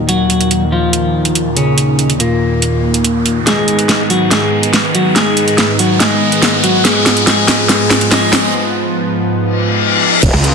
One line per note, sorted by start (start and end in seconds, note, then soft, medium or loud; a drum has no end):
0.00 3.43 D#2 medium
0.00 3.43 A#2 medium
0.00 3.43 D#3 medium
0.00 riser medium
0.09 0.64 F#3 medium
0.09 0.64 F#4 medium
0.09 closed hi-hat medium
0.30 closed hi-hat medium
0.41 closed hi-hat medium
0.51 closed hi-hat medium
0.72 1.48 F3 medium
0.72 1.48 F4 medium
0.93 closed hi-hat medium
1.25 closed hi-hat medium
1.35 closed hi-hat medium
1.56 2.12 C#3 medium
1.56 2.12 C#4 medium
1.56 closed hi-hat medium
1.78 closed hi-hat medium
1.99 closed hi-hat medium
2.10 closed hi-hat medium
2.20 3.38 A#2 medium
2.20 3.38 A#3 medium
2.20 closed hi-hat medium
2.62 closed hi-hat medium
2.94 closed hi-hat medium
3.04 closed hi-hat medium
3.26 closed hi-hat medium
3.47 10.19 G#2 medium
3.47 6.81 D#3 medium
3.47 4.02 G#3 medium
3.47 10.19 B3 medium
3.47 4.02 G#4 medium
3.47 snare soft
3.47 closed hi-hat medium
3.68 closed hi-hat soft
3.79 closed hi-hat soft
3.89 snare medium
3.89 closed hi-hat medium
4.10 4.30 F#3 medium
4.10 4.30 F#4 medium
4.10 open hi-hat medium
4.31 4.86 G#3 medium
4.31 4.86 G#4 medium
4.31 snare medium
4.31 closed hi-hat medium
4.63 closed hi-hat medium
4.73 snare medium
4.73 closed hi-hat medium
4.95 5.14 F#3 medium
4.95 5.14 F#4 medium
4.95 closed hi-hat soft
5.16 5.71 G#3 medium
5.16 5.71 G#4 medium
5.16 snare medium
5.16 closed hi-hat medium
5.37 closed hi-hat soft
5.48 closed hi-hat medium
5.58 snare medium
5.58 closed hi-hat medium
5.79 5.99 F#3 medium
5.79 5.99 F#4 medium
5.79 open hi-hat medium
6.00 6.55 G#3 medium
6.00 6.55 G#4 medium
6.00 snare medium
6.00 closed hi-hat medium
6.32 closed hi-hat soft
6.42 snare medium
6.42 closed hi-hat medium
6.63 6.83 F#3 medium
6.63 6.83 F#4 medium
6.63 closed hi-hat medium
6.85 10.19 F3 medium
6.85 7.25 G#3 medium
6.85 7.25 G#4 medium
6.85 snare medium
6.85 closed hi-hat medium
7.06 snare medium
7.06 closed hi-hat soft
7.17 closed hi-hat medium
7.27 7.68 G#3 medium
7.27 7.68 G#4 loud
7.27 snare medium
7.27 closed hi-hat medium
7.48 snare medium
7.48 open hi-hat loud
7.69 8.10 G#3 medium
7.69 8.10 G#4 medium
7.69 snare medium
7.69 closed hi-hat medium
7.90 snare medium
8.01 closed hi-hat medium
8.11 8.52 G#3 medium
8.11 8.52 G#4 medium
8.11 snare medium
8.11 closed hi-hat medium
8.33 snare medium
8.33 closed hi-hat medium
9.38 reverse cymbal medium
10.23 10.32 D#1 medium
10.23 10.55 D#3 medium
10.23 10.55 A#3 medium
10.23 10.55 F#4 medium
10.23 kick loud
10.23 closed hi-hat medium
10.23 crash loud
10.23 impact medium
10.34 10.53 C#2 loud
10.44 closed hi-hat medium